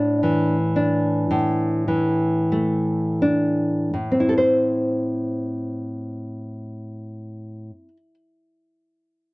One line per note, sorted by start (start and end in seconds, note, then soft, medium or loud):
0.00 1.26 A2 medium
0.00 0.55 D4 medium
0.23 1.87 E3 medium
0.76 2.53 D4 soft
1.31 3.91 A2 medium
1.88 3.94 E3 soft
2.52 3.94 A3 soft
3.22 3.94 D4 soft
3.94 7.70 A2 soft
4.12 7.88 C4 soft
4.20 7.97 E4 soft
4.29 4.37 A4 soft
4.38 8.14 C5 soft